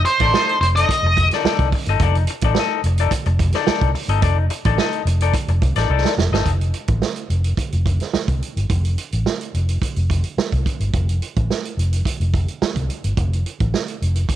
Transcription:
0.05 C5, muted clean electric guitar stroke, closed hi-hat
0.20 A1 D#4 A4 D5, kick, closed hi-hat
0.34 D#4 A4 D#5, snare
0.49 closed hi-hat
0.60 F1 C5, muted clean electric guitar stroke, closed hi-hat
0.76 D#4 A4 D5 D#5, closed hi-hat
0.89 muted fingered electric bass stroke, muted clean electric guitar stroke, kick, closed hi-hat
1.03 F1, muted clean electric guitar stroke
1.17 kick, closed hi-hat
1.31 D#4 A4 D5, snare, closed hi-hat
1.44 D#4 A4 D5, muted fingered electric bass stroke, snare
1.59 C2, kick, closed hi-hat
1.72 muted clean electric guitar stroke, kick, open hi-hat
1.86 G1 A4 D#5, closed hi-hat
1.90 D#4
2.00 F1 D#4 A4 D5, kick, closed hi-hat
2.15 muted clean electric guitar stroke, closed hi-hat
2.27 muted clean electric guitar stroke, closed hi-hat
2.41 A1 A4 D5, kick, closed hi-hat
2.46 D#4
2.55 snare
2.59 D#4 A4 D#5
2.84 F1, muted clean electric guitar stroke, closed hi-hat
2.98 D#4 A4 D5, closed hi-hat
3.11 muted clean electric guitar stroke, kick, closed hi-hat
3.26 F1, muted clean electric guitar stroke, closed hi-hat
3.39 kick, closed hi-hat
3.52 D#4 A4 D5, snare, closed hi-hat
3.67 D#4 A4 D5, muted fingered electric bass stroke, snare
3.81 C2, kick, closed hi-hat
3.95 muted clean electric guitar stroke, open hi-hat
4.08 G1 D#4 A4 D#5, closed hi-hat
4.22 F1 D#4 A4 D5, kick, closed hi-hat
4.38 muted clean electric guitar stroke
4.50 muted clean electric guitar stroke, closed hi-hat
4.65 A1 D#4 A4 D5, kick, closed hi-hat
4.78 D#4 A4 D#5, snare
4.93 closed hi-hat
5.05 F1, muted clean electric guitar stroke, closed hi-hat
5.21 D#4 A4 D5, closed hi-hat
5.34 muted clean electric guitar stroke, kick, closed hi-hat
5.48 F1, muted clean electric guitar stroke, closed hi-hat
5.62 C2, kick, closed hi-hat
5.76 A1 D#4 A4 D5, snare, closed hi-hat
5.90 C2 D#4 A4 D5
6.05 snare
6.17 F1, muted clean electric guitar stroke, snare
6.32 G1 D#4 A4 D#5, snare
6.46 F1, kick, closed hi-hat
6.61 closed hi-hat
6.74 closed hi-hat
6.88 A1, kick, closed hi-hat
7.02 snare
7.16 closed hi-hat
7.30 F1, closed hi-hat
7.44 closed hi-hat
7.57 muted fingered electric bass stroke, kick, closed hi-hat
7.72 F1, closed hi-hat
7.86 kick, closed hi-hat
8.00 snare, closed hi-hat
8.13 muted fingered electric bass stroke, snare
8.28 C2, kick, closed hi-hat
8.42 closed hi-hat
8.56 G1, closed hi-hat
8.70 F1, kick, closed hi-hat
8.85 closed hi-hat
8.98 closed hi-hat
9.12 A1, closed hi-hat
9.26 snare
9.41 closed hi-hat
9.54 F1, closed hi-hat
9.69 closed hi-hat
9.82 kick, closed hi-hat
9.96 F1, closed hi-hat
10.10 kick, closed hi-hat
10.24 closed hi-hat
10.37 muted fingered electric bass stroke, snare
10.52 C2, kick, closed hi-hat
10.66 kick, closed hi-hat
10.80 G1, closed hi-hat
10.93 F1, kick, closed hi-hat
11.09 closed hi-hat
11.22 closed hi-hat
11.36 A1, kick, closed hi-hat
11.50 snare
11.65 closed hi-hat
11.77 F1, closed hi-hat
11.93 closed hi-hat
12.05 muted fingered electric bass stroke, kick, closed hi-hat
12.20 F1, closed hi-hat
12.34 kick, closed hi-hat
12.48 closed hi-hat
12.62 muted fingered electric bass stroke, snare
12.75 C2, kick, closed hi-hat
12.90 closed hi-hat
13.04 G1, closed hi-hat
13.17 F1, kick, closed hi-hat
13.33 closed hi-hat
13.46 closed hi-hat
13.60 A1, kick, closed hi-hat
13.74 snare
13.88 closed hi-hat
14.02 F1, closed hi-hat
14.15 closed hi-hat
14.29 muted fingered electric bass stroke, kick, closed hi-hat

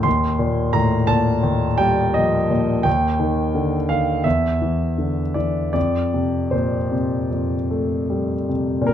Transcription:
0.03 D#2 C6
0.39 A#2
0.73 A2 A#5
1.07 A#2 A5
1.43 D#2
1.78 G3 G5
2.14 F3 D#5
2.50 A#2
2.83 D#2 G5
3.20 D#3
3.55 D3
3.89 D#3 F5
4.24 E2 E5
4.62 E3
4.98 D3
5.34 E3 D5
5.73 F2 D5
6.14 C3
6.51 A#2 C5
6.92 C3
7.31 F2
7.70 A3
8.10 G3
8.49 C3
8.81 A#2
8.87 A#4

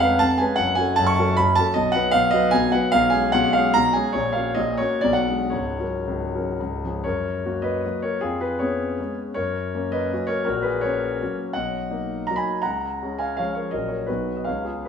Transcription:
Already playing: F1 F2 G#3 C#4 B4 F#5 G#5
0.00 G#3 C#4 B4 F5
0.19 F1 F2 A5
0.38 G#3 C#4 B4 G#5
0.56 F#1 F#2 F#5
0.75 F#3 C#4 A4 G#5
0.96 F#1 F#2 A5
1.06 C#6
1.19 F#3 C#4 A4
1.37 F#1 F#2 B5
1.55 F#3 C#4 A4 A5
1.74 B1 B2 D#5
1.92 F#3 B3 B4 F#5
2.11 B1 B2 F5
2.31 F#3 B3 B4 D#5
2.51 B1 B2 G#5
2.72 F#3 B3 B4 F#5
2.92 B1 B2 F5
3.10 G#3 C#4 G#4 G#5
3.32 B1 B2 F#5
3.53 G#3 C#4 G#4 F5
3.74 B1 B2 A#5
3.93 G#3 C#4 G#4 G#5
4.13 A#1 A#2 C#5
4.33 A#3 C#4 F#4 F5
4.55 A#1 A#2 D#5
4.78 A#3 C#4 F#4 C#5
5.01 B1 B2 D5
5.13 F#5
5.28 G#3 D4 G#4
5.50 C#1 C#2 C#5
5.80 F#3 C#4 A#4
6.08 C#1 C#2
6.35 F#3 C#4 A#4
6.60 C#1 C#2
6.84 F3 C#4 G#4
7.04 F#2 A#4 C#5
7.46 A#3 F#4
7.62 B4 D#5
7.86 F#3 A#3 F#4
8.02 A#4 C#5
8.21 F2 F4 G#4
8.41 G#4 B4
8.59 B3 C#4 G#4 C#5
9.00 G#3 B3 C#4
9.34 F#2 A#4 C#5
9.75 A#3 C#4
9.92 B4 D#5
10.13 F#3 A#3 C#4
10.27 A#4 C#5
10.45 A#1 F#4 A#4
10.62 G#4 B4
10.81 A#3 C#4 A#4 C#5
11.22 F#3 A#3 C#4
11.53 B1 D#5 F#5
11.90 A#3 D#4
12.27 F#3 A#3 D#4 A#5
12.36 G#5 B5
12.62 C#2 F#5 A#5
13.03 G#3 C#4
13.19 F5 G#5
13.37 F3 G#3 C#4 C#5 F5
13.55 A#4 C#5
13.71 A#1 F#3 C#4 A#4 D#5
13.88 A#4 C#5
14.06 B1 F#3 B3 F#4 B4
14.10 D#4
14.36 D#5
14.44 C#2 C#3 B3 C#5 F5
14.48 C#4
14.65 F4 G#4
14.85 B4

